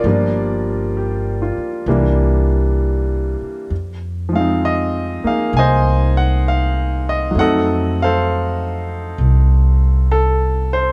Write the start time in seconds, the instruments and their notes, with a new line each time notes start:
Already playing: grand piano F4 A#4 D5
0.04 upright bass G1, grand piano F3 G3 A#3 D4
0.97 grand piano G4
1.42 grand piano F4
1.57 muted upright bass stroke
1.86 upright bass C2, grand piano E3 G3 A#3 D4
3.42 muted upright bass stroke
3.70 upright bass F2
4.29 grand piano F3 G#3
4.36 grand piano C4 F5
4.40 grand piano D#4
4.65 grand piano D#5
5.24 grand piano A#3 D#4 G#4 F5, muted upright bass stroke
5.53 upright bass C2, grand piano G#5
5.59 grand piano C5 D#5
6.17 grand piano F#5
6.48 grand piano F5
7.09 grand piano D#5
7.31 upright bass F2, grand piano F#3 A3
7.38 grand piano C4 D#4 A4 D#5 F#5
8.02 grand piano A4 C5 F5
9.18 upright bass C2
10.12 grand piano A4
10.73 grand piano C5